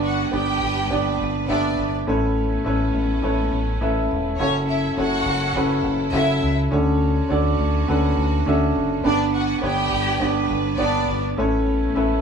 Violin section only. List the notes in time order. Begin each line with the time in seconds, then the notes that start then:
0.04 F#4 F#5
0.32 G4 G5
1.49 D4 D5
4.38 C#4 C#5
4.68 E4 E5
4.97 F#4 F#5
6.13 E4 E5
9.05 D4 D5
9.34 F#4 F#5
9.63 G4 G5
10.79 D4 D5